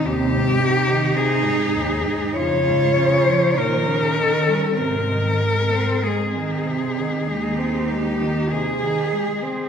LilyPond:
<<
  \new Staff \with { instrumentName = "Cello" } { \time 4/4 \key aes \major \tempo 4 = 49 g'4 aes'4 des''4 bes'4 | bes'4 aes'4. g'8 aes'4 | }
  \new Staff \with { instrumentName = "Cello" } { \time 4/4 \key aes \major c'8 ees'4. f'4 ees'8 des'8 | c'4 c'4 ees'4 aes'4 | }
  \new Staff \with { instrumentName = "Cello" } { \clef bass \time 4/4 \key aes \major ees,16 aes,16 c16 ees16 c16 aes,16 ees,16 aes,16 f,16 aes,16 des16 f16 bes,16 des16 ees16 g16 | c16 ees16 aes16 c'16 aes16 ees16 c16 ees16 aes16 c'16 aes16 ees16 c16 ees16 aes16 c'16 | }
  \new Staff \with { instrumentName = "Cello" } { \clef bass \time 4/4 \key aes \major c4 r4 des4 ees4 | aes,4 r4 ees,4 r4 | }
>>